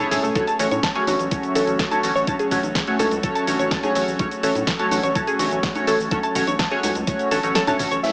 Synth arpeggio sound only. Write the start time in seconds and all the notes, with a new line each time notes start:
0.11 G#4
0.23 A3
0.35 A4
0.47 A5
0.71 C#5
0.83 A5
0.95 G#4
1.55 A4
1.79 A4
1.91 A5
2.15 C#5
2.27 A5
2.39 G#4
2.99 A4
3.23 A4
3.35 A5
3.59 C#5
3.71 A5
3.83 G#4
4.43 A4
4.67 A4
4.79 A5
5.03 C#5
5.15 A5
5.27 G#4
5.87 A4
6.11 A4
6.23 A5
6.47 C#5
6.59 A5
6.71 G#4
7.31 A4
7.55 A4
7.67 A5
7.91 C#5